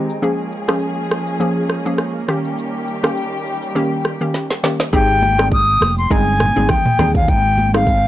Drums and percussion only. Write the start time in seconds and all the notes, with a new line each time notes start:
0.09 shaker
0.23 shaker
0.52 shaker
0.68 cross-stick, shaker
0.81 shaker
1.11 cross-stick, shaker
1.27 shaker
1.40 shaker
1.69 cross-stick, shaker
1.86 shaker
1.98 cross-stick, shaker
2.28 cross-stick, shaker
2.45 shaker
2.58 shaker
2.87 shaker
3.04 cross-stick, shaker
3.17 shaker
3.46 shaker
3.62 shaker
3.76 shaker
4.05 cross-stick, shaker
4.21 shaker
4.34 snare, shaker
4.50 snare
4.64 snare, shaker
4.80 snare, shaker
4.93 kick, shaker
5.22 high conga, shaker
5.39 cross-stick, shaker
5.52 kick, shaker
5.81 cross-stick, open hi-hat, high conga, shaker
5.98 shaker
6.11 kick, shaker
6.40 cross-stick, mid tom, high conga, shaker
6.56 high conga, shaker
6.69 kick, cross-stick, low conga, shaker
6.86 mid tom, high conga
6.99 cross-stick, open hi-hat, high conga, low conga, shaker
7.15 kick, shaker
7.28 kick, shaker
7.58 high conga, shaker
7.74 cross-stick, shaker
7.87 kick, shaker